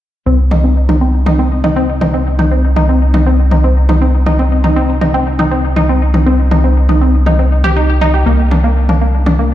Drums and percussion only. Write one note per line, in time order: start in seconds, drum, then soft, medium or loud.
0.51 mid tom medium
0.89 mid tom medium
1.26 mid tom medium
1.64 mid tom medium
2.01 mid tom medium
2.39 mid tom medium
2.76 mid tom medium
3.14 mid tom medium
3.51 mid tom medium
3.89 mid tom medium
4.26 mid tom medium
4.64 mid tom medium
5.01 mid tom medium
5.39 mid tom medium
5.76 mid tom medium
6.14 mid tom medium
6.51 mid tom medium
6.89 mid tom medium
7.26 mid tom medium
7.64 mid tom medium
8.01 mid tom medium
8.51 mid tom medium
8.89 mid tom medium
9.26 mid tom medium